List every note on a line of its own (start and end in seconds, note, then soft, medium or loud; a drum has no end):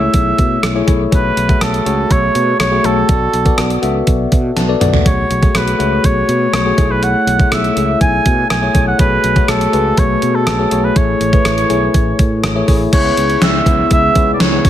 0.00 0.75 A3 medium
0.00 0.75 E4 medium
0.00 0.76 G#4 medium
0.00 0.76 C#5 medium
0.00 0.88 E5 medium
0.00 1.14 E5 medium
0.14 0.32 B1 medium
0.14 kick medium
0.14 closed hi-hat medium
0.38 0.56 B2 medium
0.38 kick medium
0.38 closed hi-hat medium
0.63 0.81 B1 medium
0.63 cross-stick loud
0.63 closed hi-hat medium
0.75 0.85 A3 medium
0.75 0.85 E4 medium
0.75 0.86 G#4 medium
0.75 0.86 C#5 medium
0.87 1.05 B1 medium
0.87 1.07 A3 medium
0.87 1.08 E4 medium
0.87 1.08 G#4 medium
0.87 1.08 C#5 medium
0.87 kick medium
0.87 closed hi-hat medium
1.11 1.30 B1 medium
1.11 1.42 A3 medium
1.11 1.42 F#4 medium
1.11 1.43 G#4 medium
1.11 1.64 B4 medium
1.11 1.43 C#5 medium
1.11 kick loud
1.11 closed hi-hat medium
1.37 1.55 B1 medium
1.37 closed hi-hat medium
1.48 1.79 A3 medium
1.48 1.79 F#4 medium
1.48 1.79 G#4 medium
1.48 1.80 E5 medium
1.48 kick medium
1.48 closed hi-hat soft
1.61 1.79 B1 medium
1.61 2.13 A4 medium
1.61 cross-stick loud
1.61 closed hi-hat medium
1.74 closed hi-hat medium
1.85 2.04 C#2 medium
1.85 2.57 A3 medium
1.85 2.57 F#4 medium
1.85 2.57 G#4 medium
1.85 2.57 C#5 medium
1.85 closed hi-hat medium
2.11 2.28 B1 loud
2.11 2.60 C#5 loud
2.11 kick medium
2.11 closed hi-hat medium
2.35 2.53 B2 medium
2.35 closed hi-hat medium
2.60 2.77 B1 loud
2.60 2.87 C#5 medium
2.60 cross-stick loud
2.60 closed hi-hat medium
2.71 2.82 A3 medium
2.71 2.82 F#4 medium
2.71 2.82 G#4 medium
2.71 2.82 C#5 medium
2.84 3.02 B1 medium
2.84 3.04 A3 medium
2.84 3.05 F#4 medium
2.84 3.05 G#4 medium
2.84 3.83 A4 medium
2.84 3.05 C#5 medium
2.84 closed hi-hat medium
3.08 3.27 B1 loud
3.08 3.39 B3 medium
3.08 3.39 F#4 medium
3.08 3.39 A4 medium
3.08 3.40 D5 medium
3.08 kick loud
3.08 closed hi-hat medium
3.33 3.51 B1 medium
3.33 closed hi-hat medium
3.45 3.76 B3 medium
3.45 3.76 F#4 medium
3.45 3.76 A4 medium
3.45 3.77 D5 medium
3.45 kick loud
3.45 closed hi-hat soft
3.58 3.76 B1 medium
3.58 cross-stick loud
3.58 closed hi-hat medium
3.70 closed hi-hat medium
3.82 4.01 C#2 medium
3.82 4.53 B3 medium
3.82 4.54 F#4 medium
3.82 4.54 A4 medium
3.82 4.54 E5 medium
3.82 closed hi-hat medium
4.07 4.25 B1 medium
4.07 kick medium
4.07 closed hi-hat medium
4.32 4.50 B2 medium
4.32 kick medium
4.32 closed hi-hat medium
4.56 4.74 B1 medium
4.56 5.02 A5 medium
4.56 snare medium
4.56 closed hi-hat medium
4.68 4.79 B3 medium
4.68 4.79 F#4 medium
4.68 4.79 A4 medium
4.68 4.79 D5 medium
4.80 4.99 B1 medium
4.80 5.01 B3 medium
4.80 5.01 F#4 medium
4.80 5.01 A4 medium
4.80 5.01 D5 medium
4.80 closed hi-hat medium
4.80 mid tom medium
4.94 floor tom medium
5.05 5.23 B1 medium
5.05 5.36 A3 medium
5.05 5.36 F#4 medium
5.05 5.36 G#4 medium
5.05 5.36 C#5 medium
5.05 5.58 C#5 medium
5.05 kick medium
5.05 closed hi-hat medium
5.30 5.48 B1 medium
5.30 closed hi-hat medium
5.42 5.73 A3 medium
5.42 5.73 F#4 medium
5.42 5.73 G#4 medium
5.42 5.73 C#5 medium
5.42 kick loud
5.42 closed hi-hat soft
5.55 5.73 B1 medium
5.55 6.07 B4 medium
5.55 cross-stick loud
5.55 closed hi-hat medium
5.68 closed hi-hat medium
5.79 5.97 C#2 medium
5.79 6.50 A3 medium
5.79 6.50 F#4 medium
5.79 6.50 G#4 medium
5.79 6.51 C#5 medium
5.79 closed hi-hat medium
6.04 6.22 B1 medium
6.04 6.54 C#5 medium
6.04 kick medium
6.04 closed hi-hat medium
6.28 6.46 B2 medium
6.28 closed hi-hat medium
6.53 6.71 B1 loud
6.53 6.92 C#5 medium
6.53 cross-stick loud
6.53 closed hi-hat medium
6.65 6.75 A3 medium
6.65 6.76 F#4 medium
6.65 6.76 G#4 medium
6.65 6.76 C#5 medium
6.77 7.13 B1 loud
6.77 7.28 A3 medium
6.77 7.28 E4 medium
6.77 7.29 G#4 medium
6.77 7.29 C#5 medium
6.77 kick loud
6.77 closed hi-hat medium
6.91 7.05 B4 medium
7.03 7.52 F#5 loud
7.03 closed hi-hat medium
7.27 7.45 B1 medium
7.27 closed hi-hat medium
7.38 7.69 A3 medium
7.38 7.69 E4 medium
7.38 7.70 G#4 medium
7.38 7.70 C#5 medium
7.38 kick loud
7.38 closed hi-hat soft
7.52 7.69 B1 medium
7.52 7.98 E5 loud
7.52 cross-stick loud
7.52 closed hi-hat medium
7.64 closed hi-hat soft
7.75 7.94 C#2 medium
7.75 8.47 A3 medium
7.75 8.47 E4 medium
7.75 8.47 G#4 medium
7.75 8.47 E5 medium
7.75 closed hi-hat medium
8.01 8.19 B1 loud
8.01 8.47 G#5 loud
8.01 kick medium
8.01 closed hi-hat medium
8.26 8.43 B2 medium
8.26 kick medium
8.26 closed hi-hat medium
8.50 8.68 B1 medium
8.50 8.84 G#5 loud
8.50 cross-stick loud
8.50 closed hi-hat medium
8.62 8.72 A3 medium
8.62 8.72 E4 medium
8.62 8.73 G#4 medium
8.62 8.73 C#5 medium
8.74 8.92 B1 medium
8.74 8.95 A3 medium
8.74 8.95 E4 medium
8.74 8.95 G#4 medium
8.74 8.95 C#5 medium
8.74 kick medium
8.74 closed hi-hat medium
8.88 8.99 F#5 medium
8.98 9.17 B1 medium
8.98 9.29 A3 medium
8.98 9.29 F#4 medium
8.98 9.30 G#4 medium
8.98 9.51 B4 medium
8.98 9.30 C#5 medium
8.98 kick loud
8.98 closed hi-hat medium
9.24 9.42 B1 medium
9.24 closed hi-hat medium
9.35 9.66 A3 medium
9.35 9.66 F#4 medium
9.35 9.67 G#4 medium
9.35 9.67 C#5 medium
9.35 kick loud
9.35 closed hi-hat soft
9.48 9.66 B1 loud
9.48 10.00 A4 medium
9.48 cross-stick loud
9.48 closed hi-hat medium
9.61 closed hi-hat medium
9.72 9.91 C#2 medium
9.72 10.44 A3 medium
9.72 10.44 F#4 medium
9.72 10.44 G#4 medium
9.72 10.44 B4 medium
9.72 closed hi-hat medium
9.97 10.15 B1 medium
9.97 10.37 C#5 medium
9.97 kick medium
9.97 closed hi-hat medium
10.22 10.48 B2 medium
10.22 closed hi-hat medium
10.35 10.86 A4 medium
10.47 10.65 B1 loud
10.47 cross-stick loud
10.47 closed hi-hat medium
10.59 10.69 A3 medium
10.59 10.69 F#4 medium
10.59 10.69 G#4 medium
10.59 10.70 C#5 medium
10.71 10.89 B1 medium
10.71 10.92 A3 medium
10.71 10.92 F#4 medium
10.71 10.92 G#4 medium
10.71 10.92 C#5 medium
10.71 closed hi-hat medium
10.84 10.98 B4 medium
10.96 11.14 A1 medium
10.96 11.26 A3 medium
10.96 11.26 E4 medium
10.96 11.27 G#4 medium
10.96 11.27 C#5 medium
10.96 12.44 C#5 medium
10.96 kick loud
10.96 closed hi-hat medium
11.20 11.38 A1 medium
11.20 closed hi-hat medium
11.32 11.63 A3 medium
11.32 11.63 E4 medium
11.32 11.63 G#4 medium
11.32 11.63 B4 medium
11.32 kick loud
11.32 closed hi-hat soft
11.45 11.63 A1 loud
11.45 cross-stick loud
11.45 closed hi-hat medium
11.58 closed hi-hat medium
11.69 11.88 B1 medium
11.69 12.40 A3 medium
11.69 12.41 E4 medium
11.69 12.41 G#4 medium
11.69 12.41 C#5 medium
11.69 closed hi-hat medium
11.94 12.12 A1 medium
11.94 kick medium
11.94 closed hi-hat medium
12.19 12.45 A2 medium
12.19 kick medium
12.19 closed hi-hat medium
12.44 12.61 A1 loud
12.44 cross-stick loud
12.44 closed hi-hat medium
12.55 12.66 A3 medium
12.55 12.66 E4 medium
12.55 12.66 G#4 medium
12.55 12.66 C#5 medium
12.67 12.86 A1 medium
12.67 12.88 A3 medium
12.67 12.88 E4 medium
12.67 12.88 G#4 medium
12.67 12.89 C#5 medium
12.67 kick medium
12.67 open hi-hat medium
12.92 13.10 C#2 loud
12.92 14.70 C#3 medium
12.92 14.63 G#3 medium
12.92 13.02 B3 medium
12.92 14.63 B3 medium
12.92 13.03 E4 medium
12.92 14.63 E4 medium
12.92 13.03 G#4 medium
12.92 13.03 C#5 medium
12.92 13.44 C#5 loud
12.92 kick loud
12.92 closed hi-hat medium
12.92 crash medium
13.04 13.55 B3 medium
13.04 13.55 E4 medium
13.04 13.56 G#4 medium
13.04 13.56 C#5 medium
13.17 13.35 C#2 medium
13.17 closed hi-hat medium
13.30 closed hi-hat soft
13.42 13.60 C#2 loud
13.42 13.92 E5 loud
13.42 snare loud
13.42 closed hi-hat medium
13.66 13.84 C#2 medium
13.66 14.07 B3 medium
13.66 14.07 E4 medium
13.66 14.07 G#4 medium
13.66 14.07 B4 medium
13.66 kick medium
13.66 closed hi-hat medium
13.91 14.09 C#2 medium
13.91 14.31 E5 loud
13.91 kick medium
13.91 closed hi-hat medium
14.15 14.33 C#2 medium
14.15 14.46 B3 medium
14.15 14.46 E4 medium
14.15 14.46 G#4 medium
14.15 14.46 C#5 medium
14.15 kick medium
14.15 closed hi-hat medium
14.34 14.43 D5 medium
14.40 14.58 C#2 loud
14.40 14.70 C#5 medium
14.40 snare loud
14.40 closed hi-hat medium
14.52 14.64 B3 medium
14.52 14.65 E4 medium
14.52 14.65 G#4 medium
14.52 14.64 C#5 medium
14.64 14.70 F#1 medium
14.64 14.70 F#3 medium
14.64 14.70 A3 medium
14.64 14.70 C#4 medium
14.64 14.70 F#4 medium
14.64 14.70 C#5 medium
14.64 kick loud
14.64 open hi-hat medium